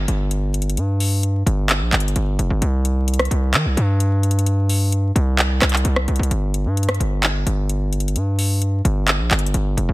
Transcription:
0.08 808-style bass G1, closed hi-hat
0.31 closed hi-hat
0.54 closed hi-hat
0.62 closed hi-hat
0.69 closed hi-hat
0.77 808-style bass G2, closed hi-hat
1.00 open hi-hat
1.23 closed hi-hat
1.46 808-style bass G1, closed hi-hat
1.69 clap, closed hi-hat
1.81 808-style bass A#1
1.93 808-style bass G1, clap, closed hi-hat
2.00 closed hi-hat
2.08 closed hi-hat
2.16 808-style bass G1, closed hi-hat
2.39 808-style bass F1, closed hi-hat
2.50 808-style bass G1
2.62 808-style bass C2, closed hi-hat
2.85 closed hi-hat
3.08 closed hi-hat
3.14 closed hi-hat
3.19 cross-stick, closed hi-hat
3.25 closed hi-hat
3.31 808-style bass C2, closed hi-hat
3.54 808-style bass D#3, clap, closed hi-hat
3.66 808-style bass C2
3.77 808-style bass G2, closed hi-hat
4.00 closed hi-hat
4.23 closed hi-hat
4.31 closed hi-hat
4.39 closed hi-hat
4.46 closed hi-hat
4.69 open hi-hat
4.92 closed hi-hat
5.16 808-style bass C2, closed hi-hat
5.38 clap, closed hi-hat
5.62 808-style bass C2, cross-stick, clap, closed hi-hat
5.69 clap, closed hi-hat
5.77 closed hi-hat
5.85 808-style bass C2, closed hi-hat
5.96 cross-stick
6.08 808-style bass C2, closed hi-hat
6.16 808-style bass C2, closed hi-hat
6.23 closed hi-hat
6.31 808-style bass G1, closed hi-hat
6.54 closed hi-hat
6.66 808-style bass G2
6.77 closed hi-hat
6.83 closed hi-hat
6.89 cross-stick, closed hi-hat
6.94 closed hi-hat
7.00 808-style bass G1, closed hi-hat
7.23 clap, closed hi-hat
7.46 808-style bass G1, closed hi-hat
7.69 closed hi-hat
7.93 closed hi-hat
8.00 closed hi-hat
8.08 closed hi-hat
8.16 808-style bass G2, closed hi-hat
8.39 open hi-hat
8.62 closed hi-hat
8.85 808-style bass G1, closed hi-hat
9.08 clap, closed hi-hat
9.20 808-style bass A#1
9.31 808-style bass G1, clap, closed hi-hat
9.39 closed hi-hat
9.46 closed hi-hat
9.54 808-style bass G1, closed hi-hat
9.77 808-style bass F1, closed hi-hat
9.89 808-style bass G1

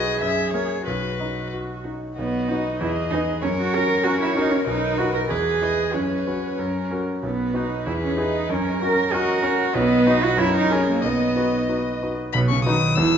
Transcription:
Already playing: grand piano B1 F#4 B4, viola D#4, cello G#4, violin D#5
0.21 grand piano F#2, violin E5
0.53 viola A#3, grand piano G#4 A#4, violin C#5
0.87 grand piano B1, cello F#4, violin B4
1.19 viola D#4, grand piano D#4
1.53 grand piano F#4
1.84 viola D#4, grand piano D#4
2.17 grand piano B1, cello B3, violin F#4, viola D#5
2.48 cello D#4, grand piano D#4 F#4 B4
2.80 grand piano E2, cello E4, violin G#4, viola D#5
3.11 cello D#4, grand piano D#4 G#4 B4
3.42 grand piano F#2, cello C#4, violin A#4, viola C#5
3.60 cello F#4
3.74 grand piano C#4 F#4 A#4, cello A#4
4.04 grand piano C#4 F#4 A#4, cello F#4, violin A#4, viola C#5
4.20 cello E4
4.35 grand piano C#4 F#4 A#4, cello D#4
4.51 cello C#4
4.67 grand piano B1, cello D#4, viola B4
4.98 grand piano D#4 F#4 B4, cello F#4
5.14 cello A#4
5.29 grand piano E2, cello G#4, viola B4, violin B4
5.62 grand piano E4 G#4 B4, violin D#5
5.93 grand piano F#2, cello C#4, viola B4, violin C#5
6.27 grand piano C#4 F#4 B4
6.58 grand piano F#2, viola A#4
6.91 grand piano C#4 F#4 A#4
7.23 grand piano B1, cello B3, viola B4
7.54 grand piano D#4 F#4 B4, cello D#4
7.86 grand piano E2, cello E4, viola G#4, violin B4
8.04 cello C#4
8.17 cello D#4, grand piano E4 G#4 B4
8.49 grand piano F#2, cello C#4, violin A#4, viola A#4
8.81 grand piano C#4 F#4 A#4, cello A#4
9.11 grand piano C#4 F#4 A#4, cello F#4, viola A#4, violin D#5
9.43 grand piano C#4 F#4 A#4, violin C#5
9.75 grand piano B1, cello B3, violin B4, viola D#5
10.07 grand piano D#4 F#4 B4, cello D#4
10.23 cello F#4
10.37 grand piano F#2, cello E4, viola A#4, violin C#5
10.57 cello D#4
10.70 grand piano C#4 G#4 A#4, cello C#4
10.90 cello A#3
11.02 grand piano B1, cello B3, violin D#5, viola D#5
11.36 grand piano D#4 F#4 B4
11.69 grand piano D#4 F#4 B4
12.02 grand piano D#4 F#4 B4
12.33 grand piano B1 B2, cello B2, viola B3, violin B5
12.49 cello C#3, viola C#4, violin C#6
12.65 cello D#3, grand piano D#4 F#4 B4, viola D#4, violin D#6
12.96 grand piano E1 E2, cello E3, viola E4, violin E6

